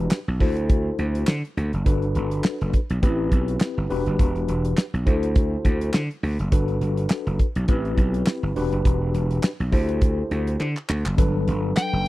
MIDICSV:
0, 0, Header, 1, 5, 480
1, 0, Start_track
1, 0, Key_signature, 1, "major"
1, 0, Tempo, 582524
1, 1534, Time_signature, 4, 2, 24, 8
1, 9955, End_track
2, 0, Start_track
2, 0, Title_t, "Lead electric guitar"
2, 0, Program_c, 0, 29
2, 9701, Note_on_c, 0, 79, 109
2, 9955, Note_off_c, 0, 79, 0
2, 9955, End_track
3, 0, Start_track
3, 0, Title_t, "Tine electric piano"
3, 0, Program_c, 1, 4
3, 0, Note_on_c, 1, 62, 91
3, 0, Note_on_c, 1, 66, 75
3, 0, Note_on_c, 1, 67, 82
3, 0, Note_on_c, 1, 71, 99
3, 145, Note_off_c, 1, 62, 0
3, 146, Note_off_c, 1, 66, 0
3, 147, Note_off_c, 1, 67, 0
3, 148, Note_off_c, 1, 71, 0
3, 330, Note_on_c, 1, 64, 90
3, 332, Note_on_c, 1, 66, 74
3, 335, Note_on_c, 1, 69, 83
3, 337, Note_on_c, 1, 72, 94
3, 1106, Note_off_c, 1, 64, 0
3, 1107, Note_off_c, 1, 66, 0
3, 1108, Note_off_c, 1, 69, 0
3, 1110, Note_off_c, 1, 72, 0
3, 1528, Note_on_c, 1, 62, 92
3, 1531, Note_on_c, 1, 66, 78
3, 1534, Note_on_c, 1, 69, 83
3, 1536, Note_on_c, 1, 71, 101
3, 2295, Note_off_c, 1, 62, 0
3, 2297, Note_off_c, 1, 66, 0
3, 2298, Note_off_c, 1, 69, 0
3, 2299, Note_off_c, 1, 71, 0
3, 2490, Note_on_c, 1, 60, 88
3, 2493, Note_on_c, 1, 64, 82
3, 2494, Note_on_c, 1, 67, 85
3, 2498, Note_on_c, 1, 71, 106
3, 3205, Note_off_c, 1, 67, 0
3, 3208, Note_off_c, 1, 71, 0
3, 3211, Note_on_c, 1, 62, 91
3, 3212, Note_off_c, 1, 60, 0
3, 3213, Note_on_c, 1, 66, 85
3, 3214, Note_off_c, 1, 64, 0
3, 3215, Note_on_c, 1, 67, 84
3, 3218, Note_on_c, 1, 71, 100
3, 3986, Note_off_c, 1, 62, 0
3, 3987, Note_off_c, 1, 66, 0
3, 3988, Note_off_c, 1, 67, 0
3, 3990, Note_off_c, 1, 71, 0
3, 4170, Note_on_c, 1, 64, 86
3, 4172, Note_on_c, 1, 66, 81
3, 4174, Note_on_c, 1, 69, 84
3, 4176, Note_on_c, 1, 72, 99
3, 4946, Note_off_c, 1, 64, 0
3, 4947, Note_off_c, 1, 66, 0
3, 4948, Note_off_c, 1, 69, 0
3, 4949, Note_off_c, 1, 72, 0
3, 5370, Note_on_c, 1, 62, 85
3, 5372, Note_on_c, 1, 66, 85
3, 5375, Note_on_c, 1, 69, 85
3, 5378, Note_on_c, 1, 71, 91
3, 6136, Note_off_c, 1, 62, 0
3, 6137, Note_off_c, 1, 66, 0
3, 6139, Note_off_c, 1, 69, 0
3, 6140, Note_off_c, 1, 71, 0
3, 6332, Note_on_c, 1, 60, 80
3, 6333, Note_on_c, 1, 64, 78
3, 6335, Note_on_c, 1, 67, 84
3, 6337, Note_on_c, 1, 71, 99
3, 7046, Note_off_c, 1, 67, 0
3, 7048, Note_off_c, 1, 71, 0
3, 7053, Note_off_c, 1, 60, 0
3, 7053, Note_on_c, 1, 62, 96
3, 7054, Note_off_c, 1, 64, 0
3, 7054, Note_on_c, 1, 66, 77
3, 7056, Note_on_c, 1, 67, 82
3, 7058, Note_on_c, 1, 71, 101
3, 7827, Note_off_c, 1, 62, 0
3, 7828, Note_off_c, 1, 66, 0
3, 7829, Note_off_c, 1, 67, 0
3, 7830, Note_off_c, 1, 71, 0
3, 8011, Note_on_c, 1, 64, 87
3, 8013, Note_on_c, 1, 67, 80
3, 8016, Note_on_c, 1, 69, 84
3, 8019, Note_on_c, 1, 72, 104
3, 8787, Note_off_c, 1, 64, 0
3, 8787, Note_off_c, 1, 67, 0
3, 8789, Note_off_c, 1, 69, 0
3, 8791, Note_off_c, 1, 72, 0
3, 9208, Note_on_c, 1, 62, 88
3, 9211, Note_on_c, 1, 54, 86
3, 9213, Note_on_c, 1, 69, 86
3, 9214, Note_on_c, 1, 71, 103
3, 9955, Note_off_c, 1, 54, 0
3, 9955, Note_off_c, 1, 62, 0
3, 9955, Note_off_c, 1, 69, 0
3, 9955, Note_off_c, 1, 71, 0
3, 9955, End_track
4, 0, Start_track
4, 0, Title_t, "Slap bass"
4, 0, Program_c, 2, 36
4, 230, Note_on_c, 2, 35, 86
4, 318, Note_off_c, 2, 35, 0
4, 335, Note_on_c, 2, 38, 84
4, 736, Note_off_c, 2, 38, 0
4, 813, Note_on_c, 2, 38, 80
4, 1015, Note_off_c, 2, 38, 0
4, 1054, Note_on_c, 2, 50, 94
4, 1167, Note_off_c, 2, 50, 0
4, 1295, Note_on_c, 2, 38, 83
4, 1407, Note_off_c, 2, 38, 0
4, 1430, Note_on_c, 2, 30, 82
4, 1518, Note_off_c, 2, 30, 0
4, 1535, Note_on_c, 2, 31, 96
4, 1736, Note_off_c, 2, 31, 0
4, 1778, Note_on_c, 2, 31, 97
4, 1977, Note_off_c, 2, 31, 0
4, 2154, Note_on_c, 2, 30, 89
4, 2240, Note_off_c, 2, 30, 0
4, 2392, Note_on_c, 2, 35, 96
4, 2479, Note_off_c, 2, 35, 0
4, 2497, Note_on_c, 2, 33, 86
4, 2697, Note_off_c, 2, 33, 0
4, 2734, Note_on_c, 2, 35, 94
4, 2935, Note_off_c, 2, 35, 0
4, 3111, Note_on_c, 2, 31, 81
4, 3199, Note_off_c, 2, 31, 0
4, 3218, Note_on_c, 2, 28, 92
4, 3329, Note_off_c, 2, 28, 0
4, 3351, Note_on_c, 2, 30, 91
4, 3438, Note_off_c, 2, 30, 0
4, 3456, Note_on_c, 2, 28, 107
4, 3656, Note_off_c, 2, 28, 0
4, 3695, Note_on_c, 2, 28, 98
4, 3896, Note_off_c, 2, 28, 0
4, 4068, Note_on_c, 2, 35, 78
4, 4156, Note_off_c, 2, 35, 0
4, 4177, Note_on_c, 2, 38, 80
4, 4577, Note_off_c, 2, 38, 0
4, 4656, Note_on_c, 2, 38, 85
4, 4856, Note_off_c, 2, 38, 0
4, 4895, Note_on_c, 2, 50, 97
4, 5007, Note_off_c, 2, 50, 0
4, 5135, Note_on_c, 2, 38, 91
4, 5247, Note_off_c, 2, 38, 0
4, 5269, Note_on_c, 2, 30, 81
4, 5357, Note_off_c, 2, 30, 0
4, 5375, Note_on_c, 2, 31, 105
4, 5575, Note_off_c, 2, 31, 0
4, 5613, Note_on_c, 2, 31, 84
4, 5814, Note_off_c, 2, 31, 0
4, 5988, Note_on_c, 2, 30, 98
4, 6077, Note_off_c, 2, 30, 0
4, 6228, Note_on_c, 2, 35, 87
4, 6317, Note_off_c, 2, 35, 0
4, 6333, Note_on_c, 2, 33, 98
4, 6535, Note_off_c, 2, 33, 0
4, 6571, Note_on_c, 2, 35, 80
4, 6773, Note_off_c, 2, 35, 0
4, 6946, Note_on_c, 2, 31, 93
4, 7036, Note_off_c, 2, 31, 0
4, 7053, Note_on_c, 2, 28, 91
4, 7166, Note_off_c, 2, 28, 0
4, 7188, Note_on_c, 2, 30, 88
4, 7277, Note_off_c, 2, 30, 0
4, 7296, Note_on_c, 2, 28, 114
4, 7496, Note_off_c, 2, 28, 0
4, 7534, Note_on_c, 2, 28, 99
4, 7735, Note_off_c, 2, 28, 0
4, 7910, Note_on_c, 2, 35, 78
4, 7998, Note_off_c, 2, 35, 0
4, 8014, Note_on_c, 2, 38, 93
4, 8416, Note_off_c, 2, 38, 0
4, 8497, Note_on_c, 2, 38, 88
4, 8696, Note_off_c, 2, 38, 0
4, 8736, Note_on_c, 2, 50, 94
4, 8848, Note_off_c, 2, 50, 0
4, 8977, Note_on_c, 2, 38, 97
4, 9088, Note_off_c, 2, 38, 0
4, 9111, Note_on_c, 2, 30, 84
4, 9198, Note_off_c, 2, 30, 0
4, 9216, Note_on_c, 2, 31, 114
4, 9416, Note_off_c, 2, 31, 0
4, 9457, Note_on_c, 2, 31, 99
4, 9657, Note_off_c, 2, 31, 0
4, 9831, Note_on_c, 2, 30, 90
4, 9919, Note_off_c, 2, 30, 0
4, 9955, End_track
5, 0, Start_track
5, 0, Title_t, "Drums"
5, 88, Note_on_c, 9, 39, 88
5, 95, Note_on_c, 9, 38, 97
5, 170, Note_off_c, 9, 39, 0
5, 178, Note_off_c, 9, 38, 0
5, 332, Note_on_c, 9, 46, 74
5, 333, Note_on_c, 9, 36, 90
5, 414, Note_off_c, 9, 46, 0
5, 415, Note_off_c, 9, 36, 0
5, 467, Note_on_c, 9, 42, 61
5, 549, Note_off_c, 9, 42, 0
5, 572, Note_on_c, 9, 42, 92
5, 574, Note_on_c, 9, 36, 109
5, 654, Note_off_c, 9, 42, 0
5, 656, Note_off_c, 9, 36, 0
5, 813, Note_on_c, 9, 42, 56
5, 896, Note_off_c, 9, 42, 0
5, 948, Note_on_c, 9, 42, 62
5, 1030, Note_off_c, 9, 42, 0
5, 1047, Note_on_c, 9, 39, 93
5, 1054, Note_on_c, 9, 38, 113
5, 1129, Note_off_c, 9, 39, 0
5, 1136, Note_off_c, 9, 38, 0
5, 1193, Note_on_c, 9, 42, 37
5, 1275, Note_off_c, 9, 42, 0
5, 1297, Note_on_c, 9, 42, 58
5, 1379, Note_off_c, 9, 42, 0
5, 1426, Note_on_c, 9, 42, 47
5, 1508, Note_off_c, 9, 42, 0
5, 1534, Note_on_c, 9, 36, 107
5, 1534, Note_on_c, 9, 42, 101
5, 1616, Note_off_c, 9, 36, 0
5, 1617, Note_off_c, 9, 42, 0
5, 1667, Note_on_c, 9, 42, 34
5, 1750, Note_off_c, 9, 42, 0
5, 1773, Note_on_c, 9, 42, 59
5, 1855, Note_off_c, 9, 42, 0
5, 1906, Note_on_c, 9, 42, 55
5, 1989, Note_off_c, 9, 42, 0
5, 2009, Note_on_c, 9, 39, 87
5, 2017, Note_on_c, 9, 38, 112
5, 2092, Note_off_c, 9, 39, 0
5, 2099, Note_off_c, 9, 38, 0
5, 2152, Note_on_c, 9, 42, 35
5, 2234, Note_off_c, 9, 42, 0
5, 2253, Note_on_c, 9, 42, 77
5, 2255, Note_on_c, 9, 36, 86
5, 2335, Note_off_c, 9, 42, 0
5, 2337, Note_off_c, 9, 36, 0
5, 2387, Note_on_c, 9, 42, 58
5, 2469, Note_off_c, 9, 42, 0
5, 2494, Note_on_c, 9, 42, 97
5, 2496, Note_on_c, 9, 36, 110
5, 2577, Note_off_c, 9, 42, 0
5, 2578, Note_off_c, 9, 36, 0
5, 2733, Note_on_c, 9, 36, 95
5, 2735, Note_on_c, 9, 42, 60
5, 2816, Note_off_c, 9, 36, 0
5, 2818, Note_off_c, 9, 42, 0
5, 2868, Note_on_c, 9, 42, 68
5, 2951, Note_off_c, 9, 42, 0
5, 2969, Note_on_c, 9, 39, 94
5, 2976, Note_on_c, 9, 38, 113
5, 3051, Note_off_c, 9, 39, 0
5, 3058, Note_off_c, 9, 38, 0
5, 3216, Note_on_c, 9, 46, 61
5, 3299, Note_off_c, 9, 46, 0
5, 3348, Note_on_c, 9, 42, 46
5, 3430, Note_off_c, 9, 42, 0
5, 3455, Note_on_c, 9, 36, 106
5, 3457, Note_on_c, 9, 42, 98
5, 3538, Note_off_c, 9, 36, 0
5, 3539, Note_off_c, 9, 42, 0
5, 3590, Note_on_c, 9, 42, 33
5, 3672, Note_off_c, 9, 42, 0
5, 3695, Note_on_c, 9, 42, 67
5, 3778, Note_off_c, 9, 42, 0
5, 3829, Note_on_c, 9, 42, 57
5, 3911, Note_off_c, 9, 42, 0
5, 3932, Note_on_c, 9, 39, 83
5, 3939, Note_on_c, 9, 38, 110
5, 4015, Note_off_c, 9, 39, 0
5, 4022, Note_off_c, 9, 38, 0
5, 4075, Note_on_c, 9, 42, 36
5, 4157, Note_off_c, 9, 42, 0
5, 4175, Note_on_c, 9, 36, 92
5, 4176, Note_on_c, 9, 42, 73
5, 4258, Note_off_c, 9, 36, 0
5, 4258, Note_off_c, 9, 42, 0
5, 4309, Note_on_c, 9, 42, 64
5, 4391, Note_off_c, 9, 42, 0
5, 4413, Note_on_c, 9, 42, 94
5, 4415, Note_on_c, 9, 36, 124
5, 4495, Note_off_c, 9, 42, 0
5, 4498, Note_off_c, 9, 36, 0
5, 4654, Note_on_c, 9, 36, 93
5, 4657, Note_on_c, 9, 42, 60
5, 4736, Note_off_c, 9, 36, 0
5, 4739, Note_off_c, 9, 42, 0
5, 4790, Note_on_c, 9, 42, 62
5, 4873, Note_off_c, 9, 42, 0
5, 4890, Note_on_c, 9, 39, 88
5, 4897, Note_on_c, 9, 38, 112
5, 4972, Note_off_c, 9, 39, 0
5, 4979, Note_off_c, 9, 38, 0
5, 5033, Note_on_c, 9, 42, 34
5, 5115, Note_off_c, 9, 42, 0
5, 5137, Note_on_c, 9, 46, 62
5, 5219, Note_off_c, 9, 46, 0
5, 5267, Note_on_c, 9, 42, 47
5, 5349, Note_off_c, 9, 42, 0
5, 5372, Note_on_c, 9, 42, 101
5, 5374, Note_on_c, 9, 36, 112
5, 5455, Note_off_c, 9, 42, 0
5, 5456, Note_off_c, 9, 36, 0
5, 5505, Note_on_c, 9, 42, 34
5, 5587, Note_off_c, 9, 42, 0
5, 5614, Note_on_c, 9, 42, 70
5, 5697, Note_off_c, 9, 42, 0
5, 5747, Note_on_c, 9, 42, 51
5, 5829, Note_off_c, 9, 42, 0
5, 5848, Note_on_c, 9, 39, 86
5, 5855, Note_on_c, 9, 38, 106
5, 5930, Note_off_c, 9, 39, 0
5, 5937, Note_off_c, 9, 38, 0
5, 5990, Note_on_c, 9, 42, 38
5, 6072, Note_off_c, 9, 42, 0
5, 6092, Note_on_c, 9, 42, 71
5, 6093, Note_on_c, 9, 36, 88
5, 6174, Note_off_c, 9, 42, 0
5, 6175, Note_off_c, 9, 36, 0
5, 6225, Note_on_c, 9, 42, 64
5, 6307, Note_off_c, 9, 42, 0
5, 6329, Note_on_c, 9, 42, 94
5, 6333, Note_on_c, 9, 36, 124
5, 6411, Note_off_c, 9, 42, 0
5, 6415, Note_off_c, 9, 36, 0
5, 6469, Note_on_c, 9, 42, 35
5, 6551, Note_off_c, 9, 42, 0
5, 6571, Note_on_c, 9, 36, 91
5, 6573, Note_on_c, 9, 42, 58
5, 6654, Note_off_c, 9, 36, 0
5, 6656, Note_off_c, 9, 42, 0
5, 6709, Note_on_c, 9, 42, 59
5, 6791, Note_off_c, 9, 42, 0
5, 6808, Note_on_c, 9, 39, 90
5, 6815, Note_on_c, 9, 38, 107
5, 6891, Note_off_c, 9, 39, 0
5, 6898, Note_off_c, 9, 38, 0
5, 7055, Note_on_c, 9, 46, 67
5, 7137, Note_off_c, 9, 46, 0
5, 7189, Note_on_c, 9, 42, 44
5, 7271, Note_off_c, 9, 42, 0
5, 7294, Note_on_c, 9, 36, 103
5, 7296, Note_on_c, 9, 42, 94
5, 7377, Note_off_c, 9, 36, 0
5, 7378, Note_off_c, 9, 42, 0
5, 7536, Note_on_c, 9, 42, 65
5, 7618, Note_off_c, 9, 42, 0
5, 7669, Note_on_c, 9, 42, 56
5, 7751, Note_off_c, 9, 42, 0
5, 7771, Note_on_c, 9, 39, 93
5, 7778, Note_on_c, 9, 38, 115
5, 7854, Note_off_c, 9, 39, 0
5, 7861, Note_off_c, 9, 38, 0
5, 7913, Note_on_c, 9, 42, 37
5, 7995, Note_off_c, 9, 42, 0
5, 8012, Note_on_c, 9, 46, 69
5, 8013, Note_on_c, 9, 36, 84
5, 8095, Note_off_c, 9, 46, 0
5, 8096, Note_off_c, 9, 36, 0
5, 8147, Note_on_c, 9, 42, 65
5, 8230, Note_off_c, 9, 42, 0
5, 8252, Note_on_c, 9, 42, 95
5, 8255, Note_on_c, 9, 36, 125
5, 8335, Note_off_c, 9, 42, 0
5, 8337, Note_off_c, 9, 36, 0
5, 8497, Note_on_c, 9, 42, 56
5, 8579, Note_off_c, 9, 42, 0
5, 8631, Note_on_c, 9, 42, 63
5, 8713, Note_off_c, 9, 42, 0
5, 8738, Note_on_c, 9, 39, 60
5, 8821, Note_off_c, 9, 39, 0
5, 8872, Note_on_c, 9, 39, 58
5, 8954, Note_off_c, 9, 39, 0
5, 8976, Note_on_c, 9, 39, 90
5, 9058, Note_off_c, 9, 39, 0
5, 9111, Note_on_c, 9, 39, 90
5, 9194, Note_off_c, 9, 39, 0
5, 9214, Note_on_c, 9, 36, 115
5, 9214, Note_on_c, 9, 42, 103
5, 9297, Note_off_c, 9, 36, 0
5, 9297, Note_off_c, 9, 42, 0
5, 9457, Note_on_c, 9, 42, 73
5, 9539, Note_off_c, 9, 42, 0
5, 9694, Note_on_c, 9, 39, 87
5, 9697, Note_on_c, 9, 42, 75
5, 9701, Note_on_c, 9, 38, 102
5, 9776, Note_off_c, 9, 39, 0
5, 9780, Note_off_c, 9, 42, 0
5, 9783, Note_off_c, 9, 38, 0
5, 9955, End_track
0, 0, End_of_file